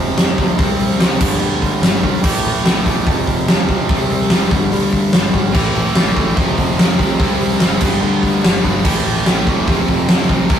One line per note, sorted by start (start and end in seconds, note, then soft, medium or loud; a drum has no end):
0.00 0.16 F1 loud
0.00 0.16 F2 loud
0.00 0.16 C3 medium
0.00 0.17 F3 loud
0.17 0.37 F2 medium
0.17 0.36 F2 medium
0.17 0.37 C3 medium
0.17 0.37 F3 medium
0.17 snare loud
0.17 open hi-hat loud
0.38 0.58 D2 medium
0.38 0.57 F2 medium
0.38 0.57 C3 medium
0.38 0.58 F3 loud
0.38 kick medium
0.38 open hi-hat medium
0.58 0.79 C2 loud
0.58 0.99 C3 medium
0.58 0.99 G3 loud
0.58 0.99 C4 loud
0.58 kick loud
0.58 open hi-hat loud
0.79 0.98 C2 loud
0.79 open hi-hat medium
0.91 snare soft
0.99 1.19 C2 medium
0.99 1.19 C3 medium
0.99 1.19 G3 medium
0.99 1.20 C4 medium
0.99 snare loud
0.99 open hi-hat loud
1.20 1.40 G1 loud
1.20 1.40 G2 loud
1.20 1.41 D3 loud
1.20 1.41 G3 loud
1.20 kick loud
1.20 crash loud
1.40 1.81 D2 loud
1.40 1.81 G2 loud
1.40 1.81 D3 loud
1.40 1.82 G3 loud
1.62 kick medium
1.62 open hi-hat medium
1.82 2.02 G1 loud
1.82 2.02 G2 medium
1.82 2.02 D3 medium
1.82 2.02 G3 medium
1.82 snare loud
1.82 open hi-hat medium
2.03 2.24 B1 medium
2.03 2.22 G2 medium
2.03 2.22 D3 medium
2.03 2.23 G3 loud
2.03 kick medium
2.03 open hi-hat medium
2.23 2.44 A1 loud
2.23 2.64 A2 medium
2.23 2.64 E3 loud
2.23 2.64 A3 loud
2.23 kick loud
2.23 crash loud
2.44 2.64 A1 loud
2.44 open hi-hat medium
2.55 snare soft
2.64 2.85 A1 medium
2.64 2.84 A2 medium
2.64 2.85 E3 medium
2.64 2.85 A3 medium
2.64 snare loud
2.64 open hi-hat medium
2.85 3.06 E1 loud
2.85 3.05 A2 medium
2.85 3.05 E3 medium
2.85 3.05 A3 medium
2.85 kick medium
2.85 open hi-hat medium
3.05 3.27 F1 loud
3.05 3.45 F2 loud
3.05 3.46 C3 loud
3.05 3.46 F3 loud
3.05 kick loud
3.05 open hi-hat medium
3.27 3.47 F1 loud
3.27 kick medium
3.27 open hi-hat medium
3.47 3.66 F2 medium
3.47 3.68 F2 medium
3.47 3.67 C3 medium
3.47 3.67 F3 medium
3.47 snare loud
3.47 open hi-hat medium
3.68 3.88 C2 loud
3.68 3.87 F2 medium
3.68 3.87 C3 loud
3.68 3.88 F3 loud
3.68 kick medium
3.68 open hi-hat medium
3.88 4.09 C2 loud
3.88 4.28 C3 medium
3.88 4.29 G3 loud
3.88 4.29 C4 loud
3.88 kick loud
3.88 open hi-hat loud
4.09 4.30 C2 loud
4.09 open hi-hat medium
4.21 snare soft
4.30 4.50 F1 loud
4.30 4.49 C3 medium
4.30 4.50 G3 medium
4.30 4.50 C4 medium
4.30 snare loud
4.30 open hi-hat loud
4.50 4.71 G1 loud
4.50 4.70 G2 medium
4.50 4.70 D3 loud
4.50 4.70 G3 loud
4.50 kick loud
4.50 open hi-hat medium
4.71 5.12 D2 loud
4.71 5.11 G2 loud
4.71 5.12 D3 medium
4.71 5.12 G3 loud
4.71 open hi-hat loud
4.93 kick medium
4.93 open hi-hat medium
5.12 5.33 G1 medium
5.12 5.31 G2 medium
5.12 5.32 D3 medium
5.12 5.32 G3 medium
5.12 snare loud
5.12 open hi-hat medium
5.33 5.54 G#1 medium
5.33 5.52 G2 medium
5.33 5.53 D3 medium
5.33 5.53 G3 loud
5.33 kick medium
5.33 open hi-hat medium
5.53 5.74 A1 loud
5.53 5.94 A2 medium
5.53 5.94 E3 loud
5.53 5.94 A3 loud
5.53 6.36 C4 loud
5.53 6.37 E4 loud
5.53 kick loud
5.53 crash loud
5.75 5.95 A1 loud
5.75 open hi-hat medium
5.86 snare soft
5.95 6.16 A1 medium
5.95 6.14 A2 medium
5.95 6.14 E3 loud
5.95 6.15 A3 medium
5.95 snare loud
5.95 open hi-hat medium
6.15 6.36 A1 medium
6.15 6.35 A2 medium
6.15 6.35 E3 loud
6.15 6.35 A3 medium
6.15 kick loud
6.15 open hi-hat medium
6.36 6.57 F1 loud
6.36 6.76 F2 loud
6.36 6.77 C3 loud
6.36 6.78 F3 loud
6.36 7.18 A3 medium
6.36 7.19 C4 medium
6.36 7.19 F4 loud
6.36 kick loud
6.36 open hi-hat medium
6.58 6.78 F1 loud
6.58 kick medium
6.58 open hi-hat medium
6.78 6.97 F2 medium
6.78 6.99 F2 loud
6.78 6.97 C3 medium
6.78 6.98 F3 medium
6.78 snare loud
6.78 open hi-hat loud
6.98 7.19 C2 loud
6.98 7.18 F2 medium
6.98 7.18 C3 loud
6.98 7.18 F3 loud
6.98 kick medium
6.98 open hi-hat medium
7.19 7.40 C2 loud
7.19 7.59 C3 medium
7.19 7.59 G3 medium
7.19 7.60 C4 loud
7.19 7.81 E4 loud
7.19 kick loud
7.19 open hi-hat medium
7.40 7.61 C2 loud
7.40 open hi-hat medium
7.51 snare soft
7.60 7.81 F#1 medium
7.60 7.80 C3 medium
7.60 7.80 G3 medium
7.60 7.80 C4 medium
7.60 snare loud
7.60 open hi-hat loud
7.80 8.02 G1 loud
7.80 8.00 G2 medium
7.80 8.01 D3 loud
7.80 8.01 G3 loud
7.80 8.63 B3 loud
7.80 8.62 D4 loud
7.80 kick loud
7.80 crash loud
8.01 8.42 D2 loud
8.01 8.42 G2 loud
8.01 8.42 D3 loud
8.01 8.43 G3 loud
8.23 kick medium
8.23 open hi-hat medium
8.43 8.64 G1 loud
8.43 8.62 G2 medium
8.43 8.63 D3 medium
8.43 8.63 G3 medium
8.43 snare loud
8.43 open hi-hat loud
8.63 8.84 G1 medium
8.63 8.83 G2 medium
8.63 8.83 D3 loud
8.63 8.84 G3 loud
8.63 8.84 B3 medium
8.63 8.83 D4 medium
8.63 kick medium
8.63 open hi-hat medium
8.84 9.04 A1 loud
8.84 9.25 A2 loud
8.84 9.25 E3 loud
8.84 9.26 A3 loud
8.84 9.67 C4 loud
8.84 9.68 E4 loud
8.84 kick loud
8.84 crash loud
9.05 9.25 A1 loud
9.05 open hi-hat medium
9.17 snare soft
9.26 9.46 A1 medium
9.26 9.45 A2 medium
9.26 9.45 E3 medium
9.26 9.46 A3 loud
9.26 snare loud
9.26 open hi-hat medium
9.46 9.67 E1 loud
9.46 9.66 A2 medium
9.46 9.66 E3 medium
9.46 9.66 A3 loud
9.46 kick medium
9.46 open hi-hat medium
9.67 9.87 F1 loud
9.67 10.08 F2 loud
9.67 10.08 C3 loud
9.67 10.09 F3 loud
9.67 10.49 A3 medium
9.67 10.50 C4 medium
9.67 10.50 F4 medium
9.67 kick loud
9.67 open hi-hat medium
9.88 10.08 F1 loud
9.88 kick medium
9.88 open hi-hat medium
10.08 10.28 F2 medium
10.08 10.29 F2 loud
10.08 10.29 C3 medium
10.08 10.29 F3 medium
10.08 snare loud
10.08 open hi-hat medium
10.28 10.49 B1 medium
10.28 10.49 F2 medium
10.28 10.49 C3 loud
10.28 10.49 F3 loud
10.28 kick medium
10.28 open hi-hat medium
10.49 10.59 C2 loud
10.49 10.59 C3 medium
10.49 10.59 G3 loud
10.49 10.59 C4 loud
10.49 10.59 E4 loud
10.49 kick loud
10.49 open hi-hat loud